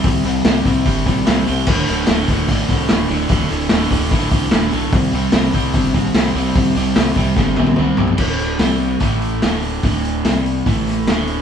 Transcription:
<<
  \new Staff \with { instrumentName = "Overdriven electric guitar" } { \clef bass \time 4/4 \key c \mixolydian \tempo 4 = 148 <c g c'>8 <c g c'>8 <c g c'>8 <c g c'>8 <c g c'>8 <c g c'>8 <c g c'>8 <c g c'>8 | <d, a, d>8 <d, a, d>8 <d, a, d>8 <d, a, d>8 <d, a, d>8 <d, a, d>8 <d, a, d>8 <d, a, d>8 | <d, a, d>8 <d, a, d>8 <d, a, d>8 <d, a, d>8 <d, a, d>8 <d, a, d>8 <d, a, d>8 <d, a, d>8 | <c g c'>8 <c g c'>8 <c g c'>8 <c g c'>8 <c g c'>8 <c g c'>8 <c g c'>8 <c g c'>8 |
<c g c'>8 <c g c'>8 <c g c'>8 <c g c'>8 <c g c'>8 <c g c'>8 <c g c'>8 <c g c'>8 | <d, a, d>4 <c g c'>4 <a, e a>4 <d, a, d>4 | <d, a, d>4 <c g c'>4 <a, e a>4 <d, a, d>4 | }
  \new Staff \with { instrumentName = "Fingered electric bass" } { \clef bass \time 4/4 \key c \mixolydian c,8 c,8 c,8 c,8 g,,8 bes,,8 c,8 c,8 | d,,8 d,,8 d,,8 d,,8 a,,8 c,8 d,,8 d,,8 | d,,8 d,,8 d,,8 d,,8 a,,8 c,8 d,,8 b,,8 | c,8 c,8 c,8 c,8 g,,8 bes,,8 c,8 c,8 |
c,8 c,8 c,8 c,8 g,,8 bes,,8 c,8 c,8 | d,,4 c,4 a,,4 d,,4 | d,,4 c,4 a,,4 d,,4 | }
  \new DrumStaff \with { instrumentName = "Drums" } \drummode { \time 4/4 <hho bd>8 hho8 <hho sn>8 <hho bd>8 <hho bd>8 <hho bd>8 <hho sn>8 hho8 | <cymc bd>8 hho8 <hho sn>8 <hho bd>8 <hho bd>8 <hho bd>8 <hho sn>8 hho8 | <hho bd>8 hho8 <hho sn>8 <hho bd>8 <hho bd>8 <hho bd>8 <hho sn>8 hho8 | <hho bd>8 hho8 <hho sn>8 <hho bd>8 <hho bd>8 <hho bd>8 <hho sn>8 hho8 |
<hho bd>8 hho8 <hho sn>8 <hho bd>8 <bd sn>8 tommh16 tommh16 toml8 tomfh16 tomfh16 | <cymc bd>8 hho8 <hho sn>8 hho8 <hho bd>8 hho8 <hho sn>8 hho8 | <hho bd>8 hho8 <hho sn>8 hho8 <hho bd>8 <hho sn>8 <hho sn>8 hho8 | }
>>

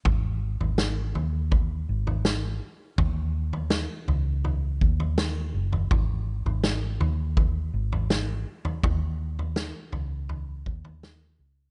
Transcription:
<<
  \new Staff \with { instrumentName = "Fingered electric bass" } { \clef bass \time 4/4 \key dis \phrygian \tempo 4 = 82 gis,,8. gis,,8. dis,4 gis,,4 r8 | dis,4~ dis,16 r16 cis,4 dis,4 fis,,8 | gis,,8. gis,,8. dis,4 gis,,4 r8 | dis,4~ dis,16 r16 cis,4 dis,4 cis,8 | }
  \new DrumStaff \with { instrumentName = "Drums" } \drummode { \time 4/4 <bd tomfh>8. tomfh16 sn8 tomfh8 <bd tomfh>8. tomfh16 sn4 | <bd tomfh>8. tomfh16 sn8 tomfh8 tomfh8 bd16 tomfh16 sn8. tomfh16 | <bd tomfh>8. tomfh16 sn8 tomfh8 <bd tomfh>8. tomfh16 sn8. tomfh16 | <bd tomfh>8. tomfh16 sn8 tomfh8 tomfh8 bd16 tomfh16 sn4 | }
>>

